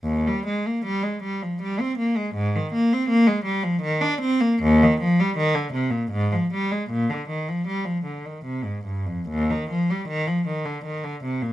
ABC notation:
X:1
M:3/4
L:1/16
Q:1/4=78
K:Eb
V:1 name="Cello" clef=bass
E,, G, A, B, G, A, G, F, G, C B, A, | A,, E, B, C B, A, G, F, E, D C B, | E,, E, F, G, E, D, C, B,, A,, F, G, A, | B,, D, E, F, G, F, D, E, C, A,, G,, F,, |
E,, E, F, G, E, F, E, D, E, D, C, B,, |]